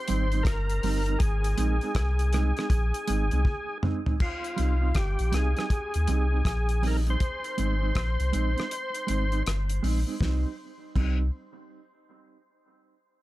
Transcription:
Already playing: C5
0.08 G#1 G3 C4 D#4, closed hi-hat
0.32 G3 C4 D#4, closed hi-hat
0.43 G1 A#4, kick, cross-stick, closed hi-hat
0.70 closed hi-hat
0.83 G1 G3 C4 D#4, open hi-hat
1.06 G3 C4 D#4, closed hi-hat
1.19 G#1 G#4, kick, closed hi-hat
1.44 closed hi-hat
1.57 A#1 G#3 C4 D#4, closed hi-hat
1.81 G#3 C4 D#4, closed hi-hat
1.95 C2, kick, cross-stick, closed hi-hat
2.19 closed hi-hat
2.33 G#3 C4 D#4, cross-stick, closed hi-hat
2.57 G#3 C4 D#4, cross-stick, closed hi-hat
2.70 A#1, kick, closed hi-hat
2.94 closed hi-hat
3.07 G#1 G#3 C4 D#4, closed hi-hat
3.31 C2 G#3 C4 D#4, closed hi-hat
3.45 kick, high tom
3.83 G#3 C4 D#4, mid tom
4.06 G#3 C4 D#4, floor tom
4.20 F4, kick, crash
4.44 closed hi-hat
4.56 C2 G3 C4 D#4, closed hi-hat
4.81 G3 C4 D#4
4.95 G1 G4, kick, cross-stick, closed hi-hat
5.19 A#1, closed hi-hat
5.32 C2 G3 C4 D#4 G#4, cross-stick, closed hi-hat
5.56 G3 C4 D#4, cross-stick, closed hi-hat
5.70 kick, closed hi-hat
5.94 D#2, closed hi-hat
6.08 C2 G3 C4 D#4, closed hi-hat
6.32 G3 C4 D#4
6.45 A#1, kick, cross-stick, closed hi-hat
6.69 closed hi-hat
6.82 G3 C4 D#4, open hi-hat
6.87 A#4
7.07 G3 C4 D#4 C5, closed hi-hat
7.20 kick, closed hi-hat
7.44 closed hi-hat
7.58 G#1 G#3 C4 D#4, closed hi-hat
7.82 G#3 C4 D#4
7.95 A#1, kick, cross-stick, closed hi-hat
8.20 C2, closed hi-hat
8.33 A#1 G#3 C4 D#4, closed hi-hat
8.56 G#3 C4 D#4, closed hi-hat
8.60 cross-stick
8.71 closed hi-hat
8.95 closed hi-hat
9.07 G#1 G#3 C4 D#4, closed hi-hat
9.32 G#3 C4 D#4, closed hi-hat
9.46 G1, cross-stick, closed hi-hat
9.70 closed hi-hat
9.83 A#1 G#3 C4 D#4, open hi-hat
10.07 G#3 C4 D#4
10.20 C2 G3 C4 D#4, kick, snare
10.95 C2 G3 C4 D#4, kick, crash

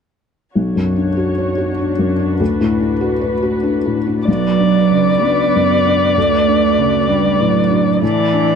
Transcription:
0.55 B1 D4 F#4 C#5
0.76 F#2
0.96 D4
1.17 F#4
1.38 C#5
1.58 F#4
1.79 D4
1.99 F#2
2.19 D4
2.40 D2 B4
2.61 A2
2.80 D4
3.01 F#4
3.21 B4
3.43 F#4
3.63 D4
3.86 A2
4.07 D4
4.27 B1 F#3 F#4 B4 D5
4.60 D4
4.91 C#3
5.23 B3 D4
5.56 F#2
5.86 D4
6.16 D2 A3 B4
6.48 D4
6.78 C#3
7.09 G3 D4
7.40 A2 F#3
7.71 D4
8.01 A2 E3 E4 A4 D5
8.33 D4

